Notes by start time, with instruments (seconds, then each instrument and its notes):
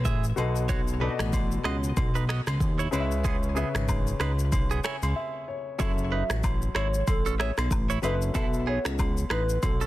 Already playing: grand piano A3 E4 G#4 C#5 D#5
0.05 analog synth bass A1, clean electric guitar G#4 E5, kick, shaker
0.24 shaker
0.36 analog synth bass B1, grand piano B2 B3 A4 D#5, high agogo, shaker
0.56 shaker
0.69 clean electric guitar F#4 C#5, kick, high agogo, shaker
0.88 shaker
1.00 grand piano B2 B3 A4 D5, clean electric guitar D#4 B4
1.09 grand piano D#5
1.19 analog synth bass A1, finger snap, cross-stick, shaker
1.33 kick, high agogo, shaker
1.52 shaker
1.64 analog synth bass C#2, clean electric guitar F#4 D#5, finger snap, cross-stick, high agogo
1.84 shaker
1.97 analog synth bass B1, kick, high agogo, shaker
2.15 clean electric guitar D#4 B4, shaker
2.29 clean electric guitar F#4 D#5, finger snap, cross-stick
2.47 analog synth bass C#2, finger snap, cross-stick, high agogo, shaker
2.60 analog synth bass D#2, kick, shaker
2.79 clean electric guitar E4 C#5, shaker
2.91 analog synth bass C#2, grand piano C#3 C#4 B4 D#5, clean electric guitar E4 B4, high agogo, shaker
3.00 grand piano E5
3.11 shaker
3.24 clean electric guitar B3 G#4, kick, high agogo, shaker
3.43 shaker
3.55 grand piano C#3 C#4 B4 E5, clean electric guitar B3 G#4, shaker
3.75 analog synth bass G#1, finger snap, cross-stick, shaker
3.88 kick, high agogo, low woodblock, shaker
4.07 shaker
4.20 analog synth bass C#2, clean electric guitar D#4 B4, finger snap, cross-stick, high agogo, shaker
4.39 shaker
4.52 analog synth bass B1, kick, high agogo, shaker
4.71 clean electric guitar B3 G#4, shaker
4.84 clean electric guitar E4 C#5, grand piano G#5, finger snap, cross-stick, shaker
5.02 analog synth bass C#2, high agogo, shaker
5.16 grand piano E5
5.48 grand piano C#5
5.78 analog synth bass F#1, grand piano F#3 C#4 A4 E5, clean electric guitar E4 C#5, kick, high agogo, shaker
5.98 shaker
6.12 clean electric guitar D#4 B4, soft synth lead E5
6.30 analog synth bass A1, finger snap, cross-stick, shaker
6.44 kick, high agogo, low woodblock, shaker
6.62 shaker
6.75 analog synth bass G#1, clean electric guitar E4 C#5, soft synth lead C#5, finger snap, cross-stick, high agogo
6.94 shaker
7.07 analog synth bass A1, soft synth lead A4, kick, high agogo, shaker
7.26 clean electric guitar C#4 A4, shaker
7.39 clean electric guitar G#4 E5, soft synth lead C#5, finger snap, cross-stick
7.58 analog synth bass B1, finger snap, cross-stick, high agogo, shaker
7.71 analog synth bass A1, kick, low woodblock, shaker
7.90 clean electric guitar E4 C#5, shaker
8.02 analog synth bass F#1, grand piano F#3 C#4 A4 E5, clean electric guitar D#4 B4, soft synth lead B4, high agogo, shaker
8.22 shaker
8.34 analog synth bass B1, grand piano B3 F#4 A4 E5, clean electric guitar E4 A4, kick, high agogo, shaker
8.53 shaker
8.67 clean electric guitar B3 G#4, soft synth lead C#5
8.85 analog synth bass C#2, finger snap, cross-stick, shaker
8.99 kick, high agogo, low woodblock, shaker
9.17 shaker
9.30 analog synth bass A1, clean electric guitar D#4 B4, soft synth lead B4, finger snap, cross-stick, high agogo
9.49 shaker
9.63 analog synth bass B1, soft synth lead A4, kick, high agogo, shaker
9.81 clean electric guitar C#4 A4, shaker